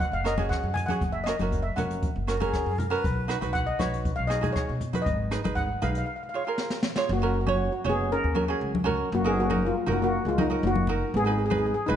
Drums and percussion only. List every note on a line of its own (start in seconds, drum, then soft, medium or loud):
0.00 kick medium
0.00 closed hi-hat medium
0.26 cross-stick medium
0.26 closed hi-hat medium
0.38 closed hi-hat medium
0.38 high conga medium
0.38 low conga medium
0.51 kick medium
0.51 cross-stick medium
0.51 closed hi-hat medium
0.76 closed hi-hat medium
0.76 low conga medium
0.88 closed hi-hat medium
0.88 high conga medium
1.01 kick medium
1.01 closed hi-hat medium
1.27 cross-stick medium
1.27 closed hi-hat medium
1.39 closed hi-hat soft
1.39 high conga medium
1.52 kick medium
1.52 closed hi-hat medium
1.77 closed hi-hat medium
1.77 high conga medium
1.77 low conga medium
1.90 closed hi-hat medium
2.02 kick medium
2.02 closed hi-hat medium
2.28 cross-stick medium
2.28 closed hi-hat medium
2.41 closed hi-hat medium
2.41 high conga medium
2.41 low conga medium
2.54 kick medium
2.54 cross-stick medium
2.54 closed hi-hat medium
2.78 closed hi-hat medium
2.78 low conga medium
2.92 closed hi-hat medium
3.04 kick loud
3.04 closed hi-hat medium
3.30 cross-stick medium
3.30 closed hi-hat medium
3.42 closed hi-hat medium
3.42 high conga medium
3.55 kick medium
3.55 closed hi-hat medium
3.80 cross-stick medium
3.80 closed hi-hat medium
3.80 high conga medium
3.80 low conga medium
3.94 closed hi-hat medium
4.05 kick medium
4.05 closed hi-hat medium
4.30 cross-stick medium
4.30 closed hi-hat medium
4.44 closed hi-hat medium
4.44 high conga medium
4.44 low conga medium
4.56 kick medium
4.56 cross-stick medium
4.56 closed hi-hat medium
4.81 closed hi-hat medium
4.81 low conga medium
4.94 closed hi-hat medium
4.94 high conga medium
5.06 kick loud
5.06 closed hi-hat medium
5.32 cross-stick medium
5.32 closed hi-hat medium
5.44 closed hi-hat medium
5.44 high conga medium
5.57 kick medium
5.57 closed hi-hat medium
5.82 closed hi-hat medium
5.82 low conga medium
5.95 closed hi-hat medium
6.58 snare medium
6.70 snare medium
6.83 snare medium
6.96 snare medium
7.47 high conga medium
7.85 low conga medium
8.36 high conga medium
8.75 high conga medium
8.87 low conga medium
9.51 high conga medium
9.88 low conga medium
10.38 high conga medium
10.76 high conga medium
10.87 low conga medium
11.52 high conga medium
11.88 low conga medium